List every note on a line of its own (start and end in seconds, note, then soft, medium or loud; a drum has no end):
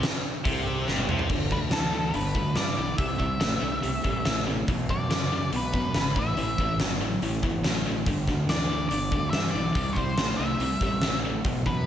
0.03 snare loud
0.03 open hi-hat soft
0.45 0.85 C2 medium
0.45 0.87 C3 medium
0.45 kick loud
0.45 open hi-hat medium
0.88 1.07 G1 medium
0.88 1.08 G2 medium
0.88 snare medium
0.98 high tom medium
1.08 1.28 C2 medium
1.08 1.30 C3 medium
1.08 mid tom medium
1.19 floor tom medium
1.29 1.49 G1 medium
1.29 1.49 G2 medium
1.29 1.49 D3 medium
1.29 kick medium
1.29 crash medium
1.51 1.71 D2 medium
1.51 1.71 G2 medium
1.51 1.71 D3 medium
1.51 1.58 B4 medium
1.51 kick medium
1.71 2.11 D2 medium
1.71 1.91 G2 medium
1.71 1.92 E3 medium
1.71 2.15 A4 medium
1.71 snare loud
1.71 open hi-hat medium
1.93 2.12 G2 medium
1.93 2.12 E3 medium
2.14 2.34 G1 medium
2.14 2.33 G2 medium
2.14 2.33 D3 medium
2.14 2.58 B4 medium
2.14 open hi-hat soft
2.35 2.55 D2 medium
2.35 2.55 G2 medium
2.35 2.55 D3 medium
2.35 kick medium
2.55 2.75 G2 medium
2.55 2.76 G2 medium
2.55 2.76 E3 medium
2.55 2.98 D5 medium
2.55 snare medium
2.55 open hi-hat soft
2.77 2.97 B1 medium
2.77 2.97 G2 medium
2.77 2.97 E3 medium
2.98 3.18 C2 medium
2.98 3.17 C3 medium
2.98 3.18 G3 medium
2.98 4.42 E5 medium
2.98 kick loud
2.98 open hi-hat soft
3.18 3.39 C2 medium
3.18 3.38 C3 medium
3.18 3.39 G3 medium
3.18 kick medium
3.40 3.61 A1 medium
3.40 3.60 C3 medium
3.40 3.60 A3 medium
3.40 snare loud
3.40 open hi-hat soft
3.61 3.82 C2 medium
3.61 3.81 C3 medium
3.61 3.81 A3 medium
3.83 4.03 C2 medium
3.83 4.02 C3 medium
3.83 4.02 G3 medium
3.83 open hi-hat soft
4.04 4.24 A1 medium
4.04 4.23 C3 medium
4.04 4.24 G3 medium
4.04 kick medium
4.25 4.65 A1 medium
4.25 4.44 C3 medium
4.25 4.44 A3 medium
4.25 snare medium
4.25 open hi-hat soft
4.47 4.66 C3 medium
4.47 4.66 A3 medium
4.68 4.88 B1 medium
4.68 4.87 E2 medium
4.68 4.88 B2 medium
4.68 kick loud
4.68 open hi-hat soft
4.89 5.09 E2 medium
4.89 5.09 F#2 medium
4.89 5.09 B2 medium
4.89 5.49 D5 medium
4.89 kick medium
5.10 5.29 E2 medium
5.10 5.50 F#2 medium
5.10 5.30 C#3 medium
5.10 snare loud
5.10 open hi-hat soft
5.32 5.51 E2 medium
5.32 5.51 C#3 medium
5.52 5.72 B1 medium
5.52 5.71 E2 medium
5.52 5.72 B2 medium
5.52 open hi-hat medium
5.56 6.20 B4 medium
5.73 5.92 E2 medium
5.73 5.93 F#2 medium
5.73 5.93 B2 medium
5.73 kick medium
5.94 6.14 G#1 medium
5.94 6.14 E2 medium
5.94 6.14 C#3 medium
5.94 snare medium
5.94 open hi-hat soft
6.16 6.36 A1 medium
6.16 6.35 A2 medium
6.16 6.35 E3 medium
6.16 6.77 E5 medium
6.16 kick medium
6.37 6.57 A1 medium
6.37 6.56 A2 medium
6.37 6.57 E3 medium
6.37 open hi-hat soft
6.58 6.78 A1 medium
6.58 6.78 A2 medium
6.58 6.78 E3 medium
6.58 kick medium
6.80 6.99 G1 medium
6.80 6.99 A2 medium
6.80 6.99 F#3 medium
6.80 snare loud
6.80 open hi-hat soft
7.01 7.21 A1 medium
7.01 7.20 A2 medium
7.01 7.20 F#3 medium
7.22 7.42 A1 medium
7.22 7.41 A2 medium
7.22 7.41 E3 medium
7.22 open hi-hat soft
7.43 7.63 G1 medium
7.43 7.62 A2 medium
7.43 7.63 E3 medium
7.43 kick medium
7.64 8.04 A1 medium
7.64 7.83 A2 medium
7.64 7.83 F#3 medium
7.64 snare loud
7.64 open hi-hat soft
7.87 8.05 A2 medium
7.87 8.05 F#3 medium
8.06 8.26 G1 medium
8.06 8.26 G2 medium
8.06 8.26 D3 medium
8.06 kick medium
8.06 open hi-hat soft
8.27 8.47 D2 medium
8.27 8.47 G2 medium
8.27 8.47 D3 medium
8.27 kick medium
8.27 snare soft
8.49 8.88 D2 medium
8.49 8.68 G2 medium
8.49 8.68 E3 medium
8.49 8.88 D5 medium
8.49 snare medium
8.49 open hi-hat soft
8.71 8.90 G2 medium
8.71 8.90 E3 medium
8.89 9.11 G1 medium
8.89 9.10 G2 medium
8.89 9.11 D3 medium
8.89 9.30 D5 medium
8.89 open hi-hat medium
9.12 9.32 D2 medium
9.12 9.31 G2 medium
9.12 9.32 D3 medium
9.12 kick medium
9.30 9.53 G2 medium
9.30 9.50 E5 loud
9.30 snare loud
9.30 open hi-hat soft
9.34 9.54 G2 medium
9.34 9.53 E3 medium
9.51 9.96 D5 medium
9.55 9.75 B1 medium
9.55 9.74 G2 medium
9.55 9.74 E3 medium
9.75 9.95 C2 medium
9.75 9.95 C3 medium
9.75 9.95 G3 medium
9.75 kick loud
9.75 open hi-hat soft
9.93 10.16 C2 medium
9.93 10.39 C5 medium
9.93 kick medium
9.98 10.16 C3 medium
9.98 10.17 G3 medium
10.18 10.38 A1 medium
10.18 10.37 C3 medium
10.18 10.37 A3 medium
10.18 snare loud
10.18 open hi-hat soft
10.37 10.59 C2 medium
10.37 10.59 C3 medium
10.37 10.59 A3 medium
10.37 11.19 E5 medium
10.60 10.80 C2 medium
10.60 10.80 C3 medium
10.60 10.80 G3 medium
10.60 open hi-hat soft
10.81 11.01 A1 medium
10.81 11.01 C3 medium
10.81 11.01 G3 medium
10.81 kick medium
11.01 11.42 A1 medium
11.01 11.22 C3 medium
11.01 11.22 A3 medium
11.01 snare medium
11.01 open hi-hat soft
11.25 11.43 C3 medium
11.25 11.44 A3 medium
11.44 11.65 B1 medium
11.44 11.64 E2 medium
11.44 11.65 B2 medium
11.44 kick loud
11.44 open hi-hat soft
11.66 11.85 E2 medium
11.66 11.86 F#2 medium
11.66 11.85 B2 medium
11.66 11.86 B4 medium
11.66 kick medium